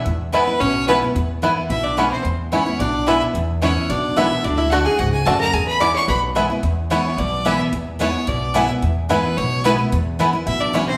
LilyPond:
<<
  \new Staff \with { instrumentName = "Fiddle" } { \time 4/4 \key e \mixolydian \tempo 4 = 219 r4 b'4 cis''4 b'8 r8 | r2 e''8 d''8 cis''8 c''8 | r4 cis''4 d''4 e''8 r8 | r4 cis''4 d''4 e''8 r8 |
d''8 e''8 fis''8 gis''8 fis''8 gis''8 a''8 ais''8 | gis''8 b''8 d'''8 cis'''8 b''8 r4. | r4 cis''4 d''4 e''8 r8 | r4 cis''4 d''4 e''8 r8 |
r4 b'4 cis''4 b'8 r8 | r2 e''8 d''8 cis''8 c''8 | }
  \new Staff \with { instrumentName = "Mandolin" } { \time 4/4 \key e \mixolydian r4 <b e' b' gis''>8 r4. <b e' b' gis''>8 r8 | r4 <b e' b' gis''>8 r4. <b e' b' gis''>8 r8 | r4 <b e' b' gis''>8 r4. <b e' b' gis''>8 r8 | r4 <b e' b' gis''>8 r4. <b e' b' gis''>8 r8 |
r4 <a fis' d'' a''>8 r4. <a fis' d'' a''>8 r8 | r4 <b e' b' gis''>8 r4. <b e' b' gis''>8 r8 | r4 <b e' b' gis''>8 r4. <b e' b' gis''>8 r8 | r4 <b e' b' gis''>8 r4. <b e' b' gis''>8 r8 |
r4 <b e' b' gis''>8 r4. <b e' b' gis''>8 r8 | r4 <b e' b' gis''>8 r4. <b e' b' gis''>8 r8 | }
  \new Staff \with { instrumentName = "Resonator guitar played with a steel bar" } { \time 4/4 \key e \mixolydian r4 b4 cis'4 b8 r8 | r2 e'8 d'8 cis'8 c'8 | r4 cis'4 d'4 e'8 r8 | r4 cis'4 d'4 e'8 r8 |
d'8 e'8 fis'8 gis'8 fis'8 gis'8 a'8 ais'8 | gis'8 b'8 d''8 cis''8 b'8 r4. | r1 | r1 |
r1 | r2 e'8 d'8 cis'8 c'8 | }
  \new Staff \with { instrumentName = "Five-string banjo" } { \time 4/4 \key e \mixolydian r4 <b e'>8 r4. <b e'>8 r8 | r4 <b e'>8 r4. <b e'>8 r8 | r4 <b e'>8 r4. <b e'>8 r8 | r4 <b e'>8 r4. <b e'>8 r8 |
r4 <a d' fis'>8 r4. <a d' fis'>8 r8 | r4 <b e'>8 r4. <b e'>8 r8 | r4 <b e'>8 r4. <b e'>8 r8 | r4 <b e'>8 r4. <b e'>8 r8 |
r4 <b e'>8 r4. <b e'>8 r8 | r4 <b e'>8 r4. <b e'>8 r8 | }
  \new Staff \with { instrumentName = "Steel-string acoustic guitar" } { \clef bass \time 4/4 \key e \mixolydian << { r4 <e gis b e'>8 <b e'>8 r4 <e gis b e'>8 <b e'>8 | r4 <e gis b e'>4 r4 <e gis b e'>4 | r4 <e gis b e'>8 <b e'>8 r4 <e gis b e'>4 | r4 <e gis b e'>4 r4 <e gis b e'>4 |
r4 <d a d' fis'>8 <d' fis'>8 r2 | r4 <e gis b e'>4 r4 <e gis b e'>8 <b e'>8 | r4 <e gis b e'>4 r4 <e gis b e'>4 | r4 <e gis b e'>4 r4 <e gis b e'>8 <b e'>8 |
r4 <e gis b e'>4 r4 <e gis b e'>8 <b e'>8 | r4 <e gis b e'>8 <b e'>8 r4 <e gis b e'>4 | } \\ { e,2 b,2 | e,2 b,2 | e,2 b,2 | e,2 b,2 |
d2 gis,4 fis,4 | e,2 b,2 | e,2 b,2 | e,2 b,2 |
e,2 b,2 | e,2 b,2 | } >> }
  \new Staff \with { instrumentName = "Upright bass" } { \clef bass \time 4/4 \key e \mixolydian e,2 b,,2 | e,2 b,,2 | e,2 b,,2 | e,2 b,,2 |
d,2 cis,4 d,4 | e,2 b,,2 | e,2 b,,2 | e,2 b,,2 |
e,2 b,,2 | e,2 b,,2 | }
>>